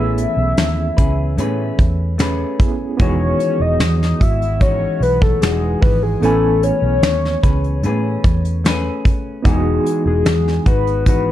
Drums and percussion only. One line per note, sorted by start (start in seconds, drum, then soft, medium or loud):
0.18 closed hi-hat medium
0.57 snare loud
0.57 closed hi-hat medium
0.98 kick medium
0.98 closed hi-hat medium
1.38 closed hi-hat medium
1.79 kick medium
1.79 closed hi-hat medium
2.19 snare loud
2.19 closed hi-hat medium
2.60 kick loud
2.60 closed hi-hat medium
2.99 kick loud
2.99 closed hi-hat medium
3.40 closed hi-hat medium
3.80 snare loud
3.80 closed hi-hat medium
4.03 snare soft
4.21 kick medium
4.21 closed hi-hat medium
4.42 closed hi-hat soft
4.61 kick medium
4.61 closed hi-hat medium
5.02 closed hi-hat medium
5.22 kick medium
5.42 snare loud
5.42 closed hi-hat medium
5.82 kick loud
5.82 open hi-hat soft
6.23 closed hi-hat medium
6.63 closed hi-hat medium
7.03 snare loud
7.03 closed hi-hat medium
7.25 snare soft
7.43 kick medium
7.43 closed hi-hat medium
7.64 closed hi-hat soft
7.83 closed hi-hat medium
8.24 kick medium
8.24 closed hi-hat medium
8.45 closed hi-hat medium
8.65 snare loud
8.65 closed hi-hat medium
9.05 kick medium
9.05 closed hi-hat medium
9.45 kick loud
9.45 closed hi-hat medium
9.86 closed hi-hat medium
10.26 snare loud
10.26 closed hi-hat medium
10.48 snare soft
10.66 kick medium
10.66 closed hi-hat medium
10.87 closed hi-hat soft
11.06 kick medium
11.06 closed hi-hat medium